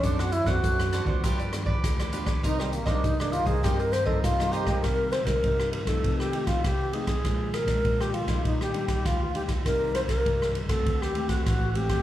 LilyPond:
<<
  \new Staff \with { instrumentName = "Cavaquinho" } { \time 4/4 \key c \minor \tempo 4 = 100 <d' c'' d'' fis''>16 <c'' d'' fis''>16 r16 <c'' d'' fis''>8. <d' c'' d'' fis''>16 <c'' d'' fis''>16 <f' g' b' d''>16 <g' b' d''>16 r16 <g' b' d''>8 <g' b' d''>16 <f' g' b' d''>16 <g' b' d''>16 | <ees' bes' c'' ees''>16 <bes' c'' ees''>16 r16 <bes' c'' ees''>8. <ees' bes' c'' ees''>16 <bes' c'' ees''>16 <ees' bes' c'' ees''>16 <bes' c'' ees''>16 r16 <bes' c'' ees''>8 <bes' c'' ees''>16 <ees' bes' c'' ees''>16 <bes' c'' ees''>16 | r1 | r1 |
r1 | }
  \new Staff \with { instrumentName = "Alto flute" } { \time 4/4 \key c \minor d'16 fis'16 e'16 fis'4~ fis'16 r2 | ees'16 g16 bes16 d'16 ees'16 d'16 f'16 aes'16 g'16 bes'16 c''16 a'16 f'8 g'8 | bes'8 c''16 bes'8. bes'16 a'8 g'8 f'16 g'8 aes'8~ | aes'8 bes'8. g'16 f'8 ees'16 g'16 g'16 g'16 f'8 g'8 |
bes'8 c''16 bes'8. r16 a'8 g'8 fis'16 fis'8 g'8 | }
  \new Staff \with { instrumentName = "Nylon-string guitar" } { \time 4/4 \key c \minor << { <c' d' a'>8 r16 <c' d' a'>16 <c' d' a'>8. <f b d'>8. <f b d'>4 <f b d'>16 r16 | <g bes ees'>8 r16 <g bes ees'>8 <g bes ees'>8 <g bes ees'>16 <g bes ees'>8 r16 <g bes ees'>8 <g bes ees'>8 <g bes ees'>16~ | <g bes ees'>8. <g bes ees'>16 <g bes ees'>8. <f a ees'>8. <f a ees'>8. r16 <f a ees'>16 r16 | <f aes d'>8. <f aes d'>16 <f aes d'>8. <g d' ees'>8. <g d' ees'>8. r16 <g d' ees'>16 r16 |
<g bes ees'>8. r16 <g bes ees'>8. <a c' fis'>8. <a c' fis'>8. r16 <a c' fis'>8 | } \\ { fis4 fis4 g,4 d4 | c4 g,4 c4 g,4 | c4 g,4 c4 c4 | bes,4 f,4 bes,4 bes,4 |
c4 g,4 d4 a,4 | } >> }
  \new Staff \with { instrumentName = "Fingered electric bass" } { \clef bass \time 4/4 \key c \minor fis,8. fis,16 fis,8. d,16 g,4 d,4 | c,8. c,16 c,8. c,16 g,4 c4 | c8. c16 c8. c16 c4 c4 | bes,8. bes,16 bes,8. bes,16 bes,4 d,4 |
c,8. c,16 c,8. des,16 d,4 a,,4 | }
  \new DrumStaff \with { instrumentName = "Drums" } \drummode { \time 4/4 <hh bd>16 <hh ss>16 hh16 <bd ss>16 <hh bd>16 <hh ss>16 <hh ss>16 bd16 <hh bd ss>16 hh16 <hh ss>16 bd16 <hh bd ss>16 <hh ss>16 hh16 <hh bd ss>16 | <hh bd>16 ss16 hh16 <bd ss>16 <hh bd>16 ss16 hh16 <hh bd>16 <hh bd ss>16 hh16 <hh ss>16 bd16 <hh bd ss>16 <hh ss>16 hh16 <bd ss>16 | <bd cymr ss>8 <cymr ss>16 <bd cymr ss>16 <bd cymr>16 ss16 cymr16 <bd cymr ss>16 <bd cymr>16 ss16 cymr16 <bd cymr ss>16 <bd cymr ss>8 cymr16 <bd cymr ss>16 | <bd cymr ss>8 <cymr ss>16 <bd cymr ss>16 <bd cymr>16 ss16 cymr16 <bd cymr ss>16 <bd cymr>16 ss16 cymr16 <bd cymr ss>16 <bd cymr ss>8 cymr16 <bd cymr ss>16 |
<bd cymr ss>8 <cymr ss>16 <bd cymr ss>16 <bd cymr>16 ss16 cymr16 <bd cymr ss>16 <bd cymr>16 ss16 cymr16 <bd cymr ss>16 <bd cymr ss>8 cymr16 <bd cymr ss>16 | }
>>